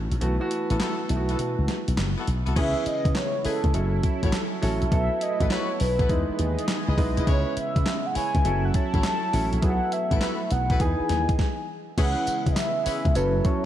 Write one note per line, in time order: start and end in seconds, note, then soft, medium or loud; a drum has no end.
0.00 0.21 E3 medium
0.00 0.21 A3 medium
0.00 0.23 C#4 medium
0.00 0.22 F#4 medium
0.11 0.20 A#1 medium
0.11 closed hi-hat soft
0.21 0.38 B1 loud
0.21 0.33 E3 medium
0.21 0.34 A3 medium
0.21 0.34 B3 medium
0.21 0.34 F#4 medium
0.21 closed hi-hat medium
0.40 0.83 E3 medium
0.40 0.84 A3 medium
0.40 0.84 B3 medium
0.40 0.84 F#4 loud
0.51 closed hi-hat medium
0.70 0.79 A1 medium
0.70 0.79 B3 medium
0.70 0.79 E4 medium
0.70 0.79 F#4 medium
0.70 0.79 A4 medium
0.70 closed hi-hat medium
0.80 1.00 B3 medium
0.80 1.00 E4 medium
0.80 1.00 F#4 medium
0.80 1.00 A4 medium
0.80 snare loud
0.80 clap medium
0.80 closed hi-hat medium
1.09 1.34 B1 medium
1.09 1.89 E3 medium
1.09 1.89 A3 medium
1.09 1.89 B3 medium
1.09 1.18 E4 medium
1.09 closed hi-hat medium
1.17 1.92 F#4 medium
1.29 1.39 B3 medium
1.29 1.39 E4 medium
1.29 1.39 F#4 medium
1.29 1.40 A4 medium
1.29 closed hi-hat soft
1.39 1.55 B2 loud
1.39 closed hi-hat medium
1.59 1.67 C#2 medium
1.68 snare medium
1.68 closed hi-hat medium
1.88 1.96 B1 medium
1.88 closed hi-hat medium
1.98 2.14 F#1 medium
1.98 snare loud
1.98 clap medium
1.98 closed hi-hat medium
2.17 2.27 B3 medium
2.17 2.27 E4 medium
2.17 2.28 F#4 medium
2.17 2.28 A4 medium
2.27 2.44 B1 medium
2.27 closed hi-hat medium
2.46 2.55 C2 medium
2.46 2.57 B3 medium
2.46 2.55 E4 medium
2.46 2.57 F#4 medium
2.46 2.57 A4 medium
2.46 closed hi-hat soft
2.56 2.73 C#2 loud
2.56 3.73 C#3 medium
2.56 3.36 E3 medium
2.56 3.73 G#3 medium
2.56 3.73 B3 medium
2.56 3.36 B3 medium
2.56 2.84 C#4 medium
2.56 3.36 C#4 medium
2.56 2.84 E4 medium
2.56 4.89 E4 medium
2.56 2.84 G#4 medium
2.56 3.36 G#4 medium
2.56 2.84 B4 loud
2.56 2.84 E5 loud
2.56 kick loud
2.56 closed hi-hat medium
2.56 crash medium
2.86 3.17 D#5 loud
2.86 muted slap bass stroke soft
2.86 closed hi-hat medium
3.05 3.14 C#3 medium
3.05 kick loud
3.05 closed hi-hat medium
3.15 3.45 C#5 loud
3.15 snare loud
3.15 clap loud
3.15 closed hi-hat medium
3.44 3.64 C#4 medium
3.44 3.64 E4 medium
3.44 3.64 G#4 medium
3.44 4.00 A4 medium
3.44 3.64 B4 medium
3.44 muted slap bass stroke soft
3.44 open hi-hat medium
3.64 3.73 C#2 medium
3.64 kick medium
3.64 closed hi-hat soft
3.74 3.99 F#1 loud
3.74 4.48 F#3 medium
3.74 4.91 F#3 medium
3.74 4.48 C#4 medium
3.74 4.91 C#4 medium
3.74 4.49 E4 medium
3.74 4.91 A4 medium
3.74 4.49 A4 medium
3.74 closed hi-hat medium
4.03 kick medium
4.03 closed hi-hat medium
4.23 4.32 A1 medium
4.23 4.33 E4 medium
4.23 4.33 F#4 medium
4.23 4.33 A4 medium
4.23 4.34 C#5 medium
4.23 kick medium
4.23 closed hi-hat medium
4.33 snare loud
4.33 clap medium
4.33 closed hi-hat medium
4.62 4.79 A1 medium
4.62 4.84 F#3 medium
4.62 4.84 C#4 medium
4.62 4.85 E4 medium
4.62 4.85 A4 medium
4.62 open hi-hat medium
4.82 4.90 A#1 medium
4.82 closed hi-hat soft
4.91 5.08 B1 loud
4.91 5.71 F#3 medium
4.91 6.08 A3 medium
4.91 5.71 B3 medium
4.91 8.41 B3 medium
4.91 6.08 E4 medium
4.91 5.71 E4 medium
4.91 5.71 A4 medium
4.91 5.24 E5 loud
4.91 kick loud
4.91 closed hi-hat medium
5.21 5.51 D#5 loud
5.21 closed hi-hat medium
5.40 5.49 A1 medium
5.40 5.49 E4 medium
5.40 5.49 F#4 medium
5.40 5.49 A4 medium
5.40 5.50 B4 medium
5.40 kick medium
5.40 closed hi-hat medium
5.50 5.70 E4 medium
5.50 5.70 F#4 medium
5.50 5.70 A4 medium
5.50 5.70 B4 medium
5.50 5.79 C#5 loud
5.50 snare loud
5.50 clap medium
5.50 closed hi-hat medium
5.80 6.05 B1 medium
5.80 6.35 B4 medium
5.80 open hi-hat medium
5.99 6.10 E4 medium
5.99 6.10 F#4 medium
5.99 6.10 A4 medium
5.99 6.10 B4 medium
5.99 kick loud
5.99 closed hi-hat soft
6.09 6.26 E2 medium
6.09 7.26 E3 medium
6.09 6.84 G#3 medium
6.09 6.84 D#4 medium
6.09 6.84 E4 medium
6.09 7.26 G#4 medium
6.09 6.84 B4 medium
6.09 7.26 D#5 medium
6.09 kick loud
6.09 closed hi-hat medium
6.29 muted slap bass stroke soft
6.39 6.55 D#2 medium
6.39 closed hi-hat medium
6.59 closed hi-hat medium
6.68 snare loud
6.68 clap medium
6.68 closed hi-hat medium
6.87 6.96 C#2 medium
6.87 6.98 E4 medium
6.87 6.98 G#4 medium
6.87 6.98 B4 medium
6.87 6.98 D#5 medium
6.97 7.14 B1 medium
6.97 7.20 G#3 medium
6.97 7.20 D#4 medium
6.97 7.20 E4 medium
6.97 7.20 B4 loud
6.97 kick medium
6.97 open hi-hat medium
7.17 7.26 C2 medium
7.17 7.26 E4 medium
7.17 7.26 G#4 medium
7.17 7.26 B4 medium
7.17 7.28 D#5 medium
7.17 closed hi-hat soft
7.27 7.44 C#2 medium
7.27 8.44 C#3 medium
7.27 8.06 G#3 medium
7.27 8.44 G#3 medium
7.27 8.07 C#4 medium
7.27 7.55 E4 loud
7.27 10.77 E4 medium
7.27 8.07 E4 medium
7.27 7.55 G#4 medium
7.27 7.55 B4 medium
7.27 8.07 B4 medium
7.27 7.55 C#5 loud
7.27 7.41 C#5 medium
7.27 kick loud
7.27 closed hi-hat medium
7.57 8.08 E5 loud
7.57 muted slap bass stroke soft
7.57 closed hi-hat medium
7.76 7.84 C#3 medium
7.76 kick medium
7.76 closed hi-hat medium
7.86 snare loud
7.86 clap medium
7.86 closed hi-hat medium
8.06 8.16 F#5 loud
8.15 8.35 E4 medium
8.15 8.35 G#4 medium
8.15 8.35 B4 medium
8.15 8.35 C#5 medium
8.15 8.67 G#5 loud
8.15 muted slap bass stroke soft
8.15 open hi-hat medium
8.35 8.43 C#2 medium
8.35 kick medium
8.35 closed hi-hat soft
8.45 8.70 F#1 loud
8.45 9.19 F#3 medium
8.45 9.61 F#3 medium
8.45 9.19 C#4 medium
8.45 9.61 C#4 medium
8.45 9.19 E4 medium
8.45 9.61 A4 medium
8.45 9.20 A4 medium
8.45 closed hi-hat medium
8.65 8.77 F#5 medium
8.74 9.04 A5 loud
8.74 kick medium
8.74 closed hi-hat medium
8.93 9.02 A1 loud
8.93 9.04 E4 medium
8.93 9.04 F#4 medium
8.93 9.04 A4 medium
8.93 9.04 C#5 medium
8.93 kick medium
8.93 closed hi-hat medium
9.04 9.50 A5 loud
9.04 snare loud
9.04 clap medium
9.04 closed hi-hat medium
9.33 9.50 A1 medium
9.33 9.55 F#3 medium
9.33 9.55 C#4 medium
9.33 9.55 E4 medium
9.33 9.56 A4 medium
9.33 open hi-hat medium
9.53 9.61 A#1 medium
9.53 closed hi-hat soft
9.62 9.79 B1 loud
9.62 10.42 F#3 medium
9.62 10.79 A3 medium
9.62 10.42 B3 medium
9.62 11.37 B3 medium
9.62 10.42 E4 medium
9.62 9.71 G#4 medium
9.62 9.94 F#5 loud
9.62 kick loud
9.62 closed hi-hat medium
9.70 10.45 A4 medium
9.92 10.53 E5 medium
9.92 closed hi-hat medium
10.11 10.20 A1 medium
10.11 10.20 E4 medium
10.11 10.20 F#4 medium
10.11 10.20 A4 medium
10.11 10.20 B4 medium
10.11 kick medium
10.11 closed hi-hat medium
10.21 10.41 E4 medium
10.21 10.41 F#4 medium
10.21 10.41 A4 medium
10.21 10.41 B4 medium
10.21 snare loud
10.21 clap medium
10.21 closed hi-hat medium
10.51 10.76 B1 loud
10.51 10.82 F#5 loud
10.51 closed hi-hat medium
10.70 10.80 E4 medium
10.70 10.81 F#4 medium
10.70 10.81 A4 medium
10.70 10.81 B4 medium
10.70 kick medium
10.70 closed hi-hat soft
10.80 10.96 E2 medium
10.80 11.31 E3 medium
10.80 11.38 E3 medium
10.80 11.31 B3 medium
10.80 11.38 D#4 medium
10.80 11.31 D#4 medium
10.80 11.38 G#4 medium
10.80 11.31 G#4 medium
10.80 11.69 G#5 loud
10.80 kick loud
10.80 closed hi-hat medium
11.00 muted slap bass stroke medium
11.09 11.26 D#2 medium
11.09 snare medium
11.09 closed hi-hat medium
11.29 kick loud
11.29 closed hi-hat medium
11.39 kick loud
11.39 snare medium
11.97 12.14 C#2 loud
11.97 13.14 C#3 medium
11.97 12.77 E3 medium
11.97 13.14 G#3 medium
11.97 13.14 B3 medium
11.97 12.77 B3 medium
11.97 12.26 C#4 medium
11.97 12.77 C#4 medium
11.97 12.26 E4 medium
11.97 13.14 E4 medium
11.97 12.26 G#4 medium
11.97 12.77 G#4 medium
11.97 12.26 B4 loud
11.97 12.48 F#5 loud
11.97 kick loud
11.97 closed hi-hat medium
11.97 crash loud
11.97 tambourine medium
12.27 muted slap bass stroke medium
12.27 closed hi-hat medium
12.27 tambourine medium
12.46 12.55 C#3 medium
12.46 kick medium
12.46 closed hi-hat medium
12.52 12.59 D#5 medium
12.56 13.17 E5 medium
12.56 snare loud
12.56 clap medium
12.56 closed hi-hat medium
12.56 tambourine loud
12.86 13.06 C#4 medium
12.86 13.06 E4 medium
12.86 13.06 G#4 medium
12.86 13.06 B4 medium
12.86 muted slap bass stroke soft
12.86 open hi-hat medium
12.86 tambourine medium
13.05 13.14 C#2 medium
13.05 kick loud
13.05 closed hi-hat soft
13.15 13.40 F#1 loud
13.15 13.41 F#3 medium
13.15 13.65 F#3 medium
13.15 13.41 C#4 medium
13.15 13.65 C#4 medium
13.15 13.65 E4 medium
13.15 13.41 E4 medium
13.15 13.65 A4 medium
13.15 13.41 A4 medium
13.15 13.47 B4 medium
13.15 closed hi-hat medium
13.15 tambourine medium
13.44 13.65 F#3 medium
13.44 13.65 C#4 medium
13.44 13.65 E4 medium
13.44 13.65 A4 medium
13.44 13.65 C#5 medium
13.44 kick loud
13.44 closed hi-hat medium